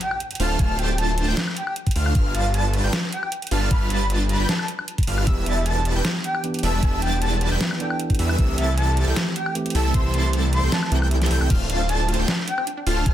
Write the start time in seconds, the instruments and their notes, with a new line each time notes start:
Already playing: impact
0.01 soft synth lead G5, closed hi-hat
0.11 high woodblock
0.20 closed hi-hat
0.31 closed hi-hat
0.35 closed hi-hat
0.40 detuned saw bass D1, supersaw synth A3 D4 F4 C5 F5, soft synth lead A5, digital synth lead F6, open hi-hat
0.59 detuned saw bass D1, supersaw synth A3 D4 F4 C5 F5, soft synth lead A5, digital synth lead F6, kick, closed hi-hat
0.79 detuned saw bass D1, supersaw synth A3 D4 F4 C5 A5, soft synth lead G5, digital synth lead A6, closed hi-hat
0.98 soft synth lead A5, closed hi-hat
1.09 soft synth lead A5
1.18 closed hi-hat
1.28 detuned saw bass D1, supersaw synth A3 D4 F4 C5 G5, digital synth lead G6
1.37 snare, closed hi-hat
1.48 high woodblock
1.57 soft synth lead G5, closed hi-hat
1.67 soft synth lead G5, high woodblock
1.76 closed hi-hat
1.87 kick, closed hi-hat
1.91 closed hi-hat
1.95 detuned saw bass D2, supersaw synth A3 D4 F4 C5 F5, digital synth lead F6, open hi-hat
2.06 high woodblock
2.15 detuned saw bass G1, digital synth lead F6, kick, closed hi-hat
2.34 detuned saw bass G1, supersaw synth G3 D4 F4 B4 A5, soft synth lead F5, digital synth lead A6, closed hi-hat
2.54 soft synth lead A5, closed hi-hat
2.74 closed hi-hat
2.84 detuned saw bass G1, supersaw synth G3 D4 F4 B4 G5, digital synth lead G6
2.93 snare, closed hi-hat
3.12 soft synth lead G5, closed hi-hat
3.23 high woodblock
3.32 closed hi-hat
3.42 closed hi-hat
3.47 closed hi-hat
3.51 detuned saw bass G1, supersaw synth G3 D4 F4 B4 F5, soft synth lead A5, digital synth lead F6, open hi-hat
3.71 detuned saw bass G1, supersaw synth G3 D4 B4, soft synth lead B5, digital synth lead F6, kick, closed hi-hat
3.82 soft synth lead B5
3.90 detuned saw bass G1, supersaw synth G3 D4 F4 B4 A5, soft synth lead B5, digital synth lead A6, closed hi-hat
4.01 soft synth lead B5
4.10 closed hi-hat
4.29 soft synth lead B5, closed hi-hat
4.39 detuned saw bass G1, supersaw synth G3 D4 F4 B4 G5, digital synth lead G6
4.49 soft synth lead A5, snare, closed hi-hat
4.59 soft synth lead A5, high woodblock
4.68 closed hi-hat
4.79 high woodblock
4.88 closed hi-hat
4.98 kick, closed hi-hat
5.03 closed hi-hat
5.07 detuned saw bass G1, supersaw synth G3 D4 F4 B4 F5, digital synth lead F6, open hi-hat
5.18 high woodblock
5.25 detuned saw bass E1, tine electric piano E3 B3 D4, supersaw synth G3 D4 E4 B4 E5, digital synth lead E6, kick, closed hi-hat
5.29 tine electric piano G4
5.46 detuned saw bass E1, supersaw synth G3 D4 E4 B4 A5, soft synth lead E5, digital synth lead A6, closed hi-hat
5.66 soft synth lead A5, closed hi-hat
5.85 closed hi-hat
5.96 detuned saw bass E1, supersaw synth G3 D4 E4 B4 G5, digital synth lead G6
6.05 snare, closed hi-hat
6.24 soft synth lead G5, closed hi-hat
6.35 high woodblock
6.43 tine electric piano E3 B3 D4 G4, closed hi-hat
6.54 closed hi-hat
6.59 closed hi-hat
6.63 detuned saw bass E1, supersaw synth G3 D4 E4 B4 E5, soft synth lead A5, digital synth lead E6, open hi-hat
6.81 detuned saw bass E1, tine electric piano E3 B3 D4 B4, supersaw synth G3 D4 E4 B4 E5, soft synth lead A5, digital synth lead E6, kick, closed hi-hat
7.02 detuned saw bass E1, supersaw synth G3 D4 E4 B4 A5, soft synth lead G5, digital synth lead A6, closed hi-hat
7.22 soft synth lead A5, closed hi-hat
7.32 soft synth lead A5
7.41 closed hi-hat
7.51 detuned saw bass E1, supersaw synth G3 D4 E4 B4 G5, digital synth lead G6
7.61 snare, closed hi-hat
7.71 high woodblock
7.78 tine electric piano E3 B3 D4 A4, soft synth lead G5, closed hi-hat
7.90 soft synth lead G5, high woodblock
8.00 closed hi-hat
8.10 kick, closed hi-hat
8.15 closed hi-hat
8.19 detuned saw bass E2, supersaw synth G3 D4 E4 B4 E5, digital synth lead E6, open hi-hat
8.29 high woodblock
8.37 detuned saw bass C2, tine electric piano E3 A3 C4 G4, supersaw synth G3 C4 E4 A4 E5, digital synth lead E6, kick, closed hi-hat
8.58 detuned saw bass C2, supersaw synth G3 C4 E4 A4 A5, soft synth lead E5, digital synth lead A6, closed hi-hat
8.77 soft synth lead A5, closed hi-hat
8.97 closed hi-hat
9.07 detuned saw bass C2, supersaw synth G3 C4 E4 A4 G5, digital synth lead G6
9.16 snare, closed hi-hat
9.36 soft synth lead G5, closed hi-hat
9.46 high woodblock
9.54 tine electric piano E3 A3 C4 G4, closed hi-hat
9.66 closed hi-hat
9.70 closed hi-hat
9.75 detuned saw bass C2, supersaw synth G3 C4 E4 A4 E5, soft synth lead A5, digital synth lead E6, open hi-hat
9.92 detuned saw bass C2, tine electric piano E3 A3 C4, supersaw synth G3 C4 E4 A4 E5, soft synth lead C6, digital synth lead E6, kick, closed hi-hat
9.96 tine electric piano C5
10.05 soft synth lead C6
10.14 detuned saw bass C2, supersaw synth G3 C4 E4 A4 A5, soft synth lead C6, digital synth lead A6, closed hi-hat
10.24 soft synth lead C6
10.33 closed hi-hat
10.53 soft synth lead C6, closed hi-hat
10.63 detuned saw bass C2, supersaw synth G3 C4 E4 A4 G5, digital synth lead G6
10.72 soft synth lead A5, snare, closed hi-hat
10.83 soft synth lead A5, high woodblock
10.90 detuned saw bass C2, tine electric piano E3 A3 C4, supersaw synth G3 C4 E4 A4 G5, digital synth lead G6, closed hi-hat
10.94 tine electric piano A4
11.02 high woodblock
11.11 closed hi-hat
11.22 snare, closed hi-hat
11.26 closed hi-hat
11.31 detuned saw bass C2, supersaw synth G3 C4 E4 A4 G5, digital synth lead G6, open hi-hat
11.41 detuned saw bass C2, supersaw synth G3 C4 E4 A4 G5, digital synth lead G6, high woodblock
11.50 detuned saw bass D1, supersaw synth A3 D4, synth arpeggio sound C4, digital synth lead F6, kick, closed hi-hat, crash
11.60 synth arpeggio sound D4
11.70 detuned saw bass D1, supersaw synth A3 D4 F4 C5 A5, synth arpeggio sound D4, soft synth lead F5, digital synth lead A6, closed hi-hat
11.80 synth arpeggio sound C4
11.89 synth arpeggio sound D4, soft synth lead A5, closed hi-hat
11.99 synth arpeggio sound D4
12.08 synth arpeggio sound F4, closed hi-hat
12.14 closed hi-hat
12.19 detuned saw bass D1, supersaw synth A3 D4 F4 C5 G5, synth arpeggio sound A4, digital synth lead G6
12.28 synth arpeggio sound C4, snare, closed hi-hat
12.38 synth arpeggio sound D4
12.47 synth arpeggio sound D4, soft synth lead G5, closed hi-hat
12.58 synth arpeggio sound C4, high woodblock
12.67 synth arpeggio sound D4, closed hi-hat
12.77 synth arpeggio sound D4
12.87 detuned saw bass D1, supersaw synth A3 D4 F4 C5 F5, synth arpeggio sound F4, soft synth lead A5, digital synth lead F6, open hi-hat
12.97 synth arpeggio sound A4
13.06 detuned saw bass D1, synth arpeggio sound C4, supersaw synth D4, soft synth lead A5, digital synth lead F6, kick, closed hi-hat